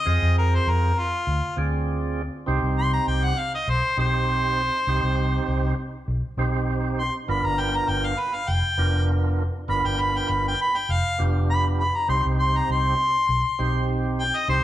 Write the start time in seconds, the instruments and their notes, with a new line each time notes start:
0.05 fingered electric bass F2, tonewheel organ C4 F4 G#4 C5, harmonica D#5
0.22 fingered electric bass F2
0.39 harmonica A#4
0.55 harmonica C5
0.67 fingered electric bass F2, harmonica A#4
0.99 harmonica F4
1.27 fingered electric bass D2
1.56 fingered electric bass D2, tonewheel organ C4 F4 G#4 D5
2.46 fingered electric bass C2, tonewheel organ C4 D#4 G4 C5
2.63 fingered electric bass C2
2.79 harmonica C6
2.93 harmonica A#5
3.07 fingered electric bass C2, harmonica G5
3.24 harmonica F#5
3.39 harmonica F5
3.55 harmonica D#5
3.68 fingered electric bass B1, harmonica C5
3.97 fingered electric bass B1, tonewheel organ C4 D#4 G4 C5, harmonica C5
4.87 fingered electric bass C2, tonewheel organ C4 D#4 G4 C5
5.03 fingered electric bass C2
5.48 fingered electric bass C2
6.08 fingered electric bass B1
6.37 fingered electric bass B1, tonewheel organ C4 D#4 G4 C5
6.99 harmonica C6
7.28 fingered electric bass G1, tonewheel organ B3 D4 F4 A#4, harmonica B5
7.44 fingered electric bass G1, harmonica A#5
7.60 harmonica G5
7.76 harmonica A#5
7.88 fingered electric bass G1, harmonica G5
8.05 harmonica F5
8.19 harmonica B4
8.35 harmonica F5
8.48 fingered electric bass F1, harmonica G5
8.78 fingered electric bass F1, tonewheel organ B3 D4 F4 A#4
9.68 fingered electric bass G1, tonewheel organ B3 D4 F4 A#4, harmonica B5
9.85 fingered electric bass G1, harmonica G5
10.01 harmonica B5
10.18 harmonica G5
10.29 fingered electric bass G1, harmonica B5
10.48 harmonica G5
10.62 harmonica B5
10.78 harmonica G5
10.89 fingered electric bass F1, harmonica F5
11.18 fingered electric bass F1, tonewheel organ B3 D4 F4 G4
11.51 harmonica B5
11.81 harmonica B5
11.96 harmonica A#5
12.08 fingered electric bass C2, tonewheel organ C4 D#4 G4 C5, harmonica C6
12.25 fingered electric bass C2
12.40 harmonica C6
12.57 harmonica A#5
12.69 fingered electric bass C2, harmonica C6
13.29 fingered electric bass B1
13.59 fingered electric bass B1, tonewheel organ C4 D#4 G4 C5
14.21 harmonica G5
14.37 harmonica D#5
14.48 fingered electric bass C2, tonewheel organ C4 D#4 G4 C5, harmonica C5